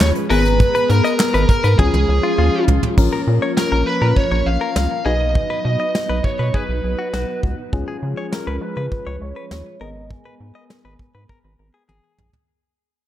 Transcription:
Already playing: F3 G#3 C#4 F4 G#4
0.01 D#2 C#5, snare, clap
0.15 closed hi-hat
0.30 G#1 B3 G#4 A#4 B4 A#5, open hi-hat
0.45 closed hi-hat
0.60 kick, closed hi-hat
0.75 B4, closed hi-hat
0.90 G#2 A#4, closed hi-hat
1.04 D#5, closed hi-hat
1.20 snare, clap
1.34 G#1 B4, closed hi-hat
1.49 A#4, kick, closed hi-hat
1.64 G#2 B4, closed hi-hat
1.79 C#2 F3 C#4 F4 G#4, kick, high tom
1.94 C#2, high tom
2.09 C#2
2.23 F4
2.38 D#2 F4
2.68 C#2, floor tom
2.83 floor tom
2.98 A#1 F3 A#3 C#4 F4 A#4, kick, crash
3.13 A#4
3.27 A#2
3.42 C#5
3.57 A#4, snare
3.72 A#1 A#4
3.87 B4
4.02 A#2 A#4
4.16 C#5, kick
4.31 A#1 C#5
4.46 A#1 F5
4.61 A#4
4.76 C#2, snare
5.05 B1 F#3 B3 D#4 F#4 G#4 B4 D#5
5.35 kick
5.50 B4
5.65 B2 D#5
5.80 D#5
5.95 snare
6.09 B1 B4
6.24 C#5, kick
6.39 B2 B4
6.54 G#4 B4, kick
6.69 B1
6.84 B1
6.99 F#4
7.13 B1 F#4, snare
7.43 C#2, kick
7.73 C#2 F3 G#3 C#4 F4 G#4, kick
7.88 G#4
8.03 C#3
8.17 C#5
8.32 A#4, snare
8.47 C#2 B4
8.62 B4
8.77 C#3 B4
8.92 kick
9.07 C#2 C#5
9.21 C#2 C#5
9.36 B4
9.51 D#2, snare
9.81 G#1 B3 G#4 A#4 D#5
10.11 G#5, kick
10.25 B4
10.40 G#2
10.55 D#5
10.70 snare
10.85 G#1 B4
10.99 kick
11.15 G#2 B4
11.29 A#4, kick
11.44 G#1
11.59 G#1
11.74 G#4
11.89 G#1 G#4, high tom
12.18 A#1, mid tom
12.33 floor tom

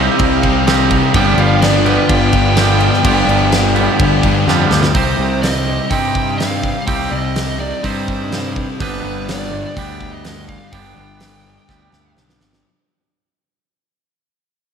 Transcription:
Already playing: C3 G3 C4 D#4 G4 D#5 F5
0.00 C3
0.19 C2, kick, crash
0.42 C3 G3 C4 D#4, kick, crash
0.65 C3 G3 C4 D#4 G4, snare, crash
0.91 kick, crash
1.13 G1 G2 D3 F3 G3 B3 D4 F4 G4 D5 G5, kick, crash
1.38 G1 F5, crash
1.62 D5, snare, crash
1.85 G2 D3 F3 G3 B3 G4 B4, crash
2.09 G1 G5, kick, crash
2.32 G2 D3 F3 B3 D4, kick, crash
2.56 G2 D3 F3 G3 B3 D4 G4, snare, crash
2.80 crash
2.93 snare
3.02 G1 G2 D3 F3 G3 B3 G4, kick, crash
3.07 D4
3.27 G1, crash
3.52 snare, crash
3.75 G2 D3 F3 G3 B3 G4, crash
3.99 G1, kick, crash
4.22 G2 D3 F3 B3 D4, kick, crash
4.47 F2 G2 D3 F3 G3 B3 D4 G4, snare
4.70 D2, snare
4.83 snare
4.93 C2 C3 G3 C4 D#4 G4 C5, kick, open hi-hat
5.19 C2
5.42 D#5, snare, open hi-hat
5.55 snare
5.66 C3 G3 C4
5.90 G2 C3 G3 C4 D#4 G4 G5, kick, open hi-hat
6.15 kick
6.38 C3 G3 C4 F5, snare, open hi-hat
6.63 kick
6.86 C2 C3 G3 C4 D#4 G4 G5, kick, open hi-hat
7.11 C2 D#5
7.36 snare, open hi-hat
7.59 C3 G3 C4 D5
7.82 G2 C3 G3 C4 D#4 G4 C5, kick, open hi-hat
8.08 kick
8.30 C3 G3 C4, snare, open hi-hat
8.56 kick
8.79 G1 G2 D3 G3 B3 D4 G4 B4, kick, open hi-hat
9.04 G1
9.28 D5, snare, open hi-hat
9.42 snare
9.51 G2 D3 G3
9.76 D2 G2 D3 G3 B3 D4 G4 G5, kick, open hi-hat
10.01 kick
10.12 D#5
10.24 G2 D3 G3, snare, open hi-hat
10.48 F5, kick
10.72 G1 G2 D3 G3 B3 D4 G4 G5, kick, open hi-hat
10.97 G1
11.20 snare, open hi-hat
11.44 G2 D3 G3
11.67 D2 G2 D3 G3 B3 D4 G4, kick, snare
11.92 D2, snare
12.16 B1 G2 D3 G3, snare
12.29 snare
12.41 G1, snare
12.53 snare

